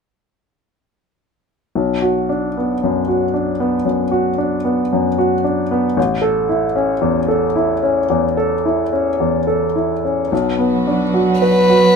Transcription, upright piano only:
1.75 B1
2.02 F#4
2.29 D4
2.57 B3
2.83 F#2
3.08 F#4
3.34 D4
3.60 B3
3.85 F#2
4.11 F#4
4.38 D4
4.65 B3
4.93 F#2
5.18 F#4
5.44 D4
5.71 B3
5.97 A1
6.22 A4
6.49 E4
6.76 C#4
7.01 E2
7.28 A4
7.56 E4
7.83 C#4
8.10 E2
8.37 A4
8.65 E4
8.93 C#4
9.20 E2
9.47 A4
9.76 E4
10.05 C#4
10.32 B1
10.59 B3
10.87 D4
11.14 F#4
11.42 B4
11.70 F#4

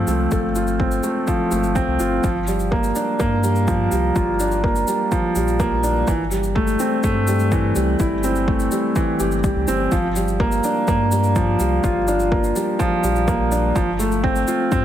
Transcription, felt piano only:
Already playing: F3 A3 C4 F4
0.08 A3
0.32 A4
0.56 F4
0.80 C4
1.03 A3
1.27 F3
1.51 A3
1.75 C4
2.00 F4
2.23 F3
2.48 G3
2.71 A#3
2.95 D4
3.19 A#3
3.43 G3
3.67 F3
3.91 G3
4.15 F4
4.40 D4
4.64 A#3
4.88 G3
5.12 F3
5.36 G3
5.60 A#3
5.83 D4
6.07 E3
6.31 G3
6.55 A3
6.80 C4
7.04 A3
7.28 G3
7.52 E3
7.76 G3
8.00 E4
8.24 C4
8.48 A3
8.72 G3
8.96 E3
9.20 G4
9.44 G3
9.68 C4
9.92 F3
10.16 G3
10.40 A#3
10.64 D4
10.88 A#3
11.12 G3
11.36 F3
11.60 G3
11.84 F4
12.08 D4
12.32 A#3
12.56 G3
12.79 F3
13.04 G3
13.28 A#3
13.52 D4
13.75 F3
13.99 A3
14.23 C4
14.48 F4
14.72 C4

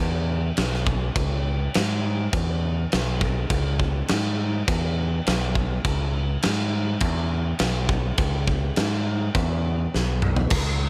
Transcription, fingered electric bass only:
0.00 E2
0.58 B1
1.16 C#2
1.76 G#2
2.33 E2
2.94 B1
3.50 C#2
4.11 G#2
4.68 E2
5.27 B1
5.85 C#2
6.45 G#2
7.01 E2
7.60 B1
8.19 C#2
8.78 G#2
9.35 E2
9.95 B1
10.52 C#2

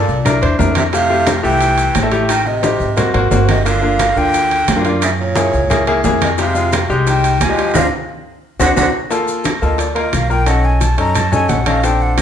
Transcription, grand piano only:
Already playing: A#3 F4 A4
0.25 D4 E4 A#4
0.42 D4 E4 C5
0.59 D4 E4 A#4
0.93 A3 E4 G4
1.10 A3 E4 G4
1.43 A3 E4 G4
2.03 A3 E4 A4
2.12 A3 E4 G4
2.62 C4 D#4 G4
2.97 A#3 C4 F#4
3.14 A#3 C4 F#4
3.31 A#3 C4 F#4
3.65 A#3 D4 F4
3.82 A#3 D4 F4
4.16 A#3 D4 F4
4.76 A#3 D4 F4
4.85 A#3 D4 F4
5.35 A#3 E4 G#4
5.70 A#3 E4 G#4
5.87 A#3 E4 G#4
6.05 A#3 E4 G#4
6.39 G#3 D#4 G4
6.54 G#3 D#4 F4
6.89 G#3 D#4 G4
7.49 G#3 D#4 G4
7.58 G#3 D#4 G4
7.75 C4 D4 F4
8.60 C4 D4 F#4
8.76 C4 D4 F#4
9.11 A#3 F4 A4
9.62 A#3 F4 A4
9.95 A#3 F4 A#4
10.30 A#3 F4 A#4
10.46 C#4 D#4 A4
10.98 C#4 D#4 A4
11.32 C#4 D#4 A4
11.66 C#4 D#4 A4
11.84 C4 D4 A4

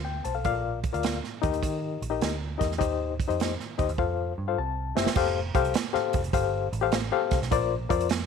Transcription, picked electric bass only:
Already playing: D2
0.25 B1
0.45 A#1
0.94 D2
1.44 D#2
1.53 D#2
1.62 D#3
2.02 A#1
2.22 D2
2.61 E2
2.81 D#2
3.30 F2
3.79 D#2
3.89 D#2
3.99 F2
4.38 G2
4.58 C2
4.97 F#1
5.16 F1
5.55 C2
5.95 muted picked electric bass stroke
6.14 F1
6.33 G1
6.73 A1
6.93 A1
7.32 C2
7.42 B1
7.52 A#1
7.90 F2

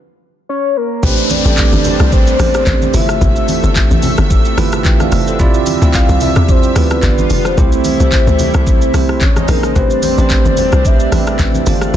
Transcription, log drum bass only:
1.03 A1
1.45 A1
1.73 G1
2.00 C2
2.39 A1
2.67 A1
2.94 G1
3.21 G1
3.63 G1
3.91 A1
4.18 G1
4.58 G1
5.12 F1
5.39 D2
5.82 D2
6.09 C2
6.36 E2
6.76 D2
7.03 G1
7.30 F1
7.58 C2
8.00 C2
8.27 D2
8.54 C2
8.94 C2
9.48 A#1
9.76 A1
10.18 A1
10.45 G1
10.73 C2
11.12 A1
11.39 A1
11.67 G1

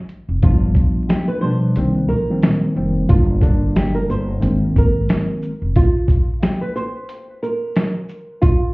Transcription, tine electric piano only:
0.42 F3 G3 B3 D4
1.42 B2 F3 G3 D4
1.77 D#3 G3 A#3 C4
2.30 D#3 G3 A#3 C4
2.75 D#3 G3 A#3 C4
3.08 D3 G3 A#3 D4
3.41 D3 G3 A#3 D4
4.40 D#3 G#3 A#3 C4

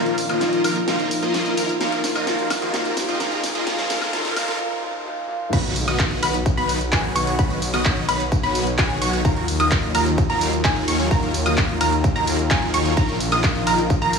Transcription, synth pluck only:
5.53 B5
5.88 D#6
6.23 B5
6.57 B5
6.92 G#5
7.15 C#6
7.39 B5
7.74 D#6
8.09 B5
8.43 B5
8.78 G#5
9.02 C#6
9.25 A#5
9.60 D#6
9.95 A#5
10.30 A#5
10.64 G#5
10.88 C#6
11.11 A#5
11.46 D#6
11.81 A#5
12.16 A#5
12.51 G#5
12.74 C#6
12.97 A#5
13.32 D#6
13.67 A#5
14.02 A#5

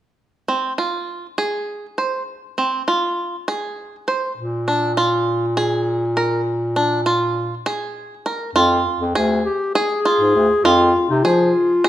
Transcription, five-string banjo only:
0.48 C4
0.78 F4
1.38 G#4
1.98 C5
2.58 C4
2.88 F4
3.48 G#4
4.08 C5
4.68 D4
4.97 F4
5.57 G#4
6.17 A#4
6.76 D4
7.06 F4
7.66 G#4
8.26 A#4
8.56 F4
9.15 G#4
9.75 G#4
10.05 F4
10.65 F4
11.25 G#4
11.84 G#4

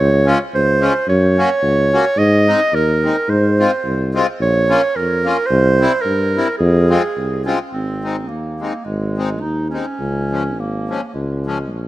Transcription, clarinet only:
0.00 C#5
0.55 C5
1.09 C#5
2.19 D#5
2.75 A#4
3.30 C5
4.42 C#5
4.96 A#4
5.46 C5
6.01 A#4
6.58 G#4
7.45 C#4
7.72 C4
8.28 A#3
8.84 G#3
9.41 D#4
9.70 C#4
10.60 A#3
11.08 A#3
11.13 G#3

